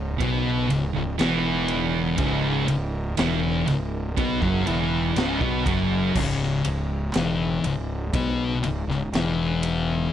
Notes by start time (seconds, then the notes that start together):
Already playing: C#1 C#2 C#3 D#4 A#4
0.18 B1 B2, kick, ride
0.22 B2 B3
0.69 C#1 C#2, ride
0.95 C#1 C#2
1.19 E1 E2 E3, snare, ride
1.68 ride
2.18 C#1 C#2 C#3, kick, ride
2.68 C#1 C#2, ride
3.17 E1 E2 E3, snare, ride
3.67 C#1 C#2, snare, ride
4.17 B1 B2 B3, kick, ride
4.42 F#1 F#2 F#3, kick
4.67 E1 E2 E3, ride
5.16 C#1 C#2 C#3, snare, ride
5.41 B1 B2 B3, kick
5.66 F#1 F#2 F#3, kick, ride
6.14 C#1 C#2 C#3 G#3 D#4, kick, crash
6.43 snare
6.65 C#1 C#2, ride
7.14 E1 E2 E3, snare, ride
7.64 C#1 C#2, ride
8.13 B1 B2 B3, kick, ride
8.62 C#1 C#2, ride
8.87 C#1 C#2, snare
9.12 E1 E2 E3, snare, ride
9.63 ride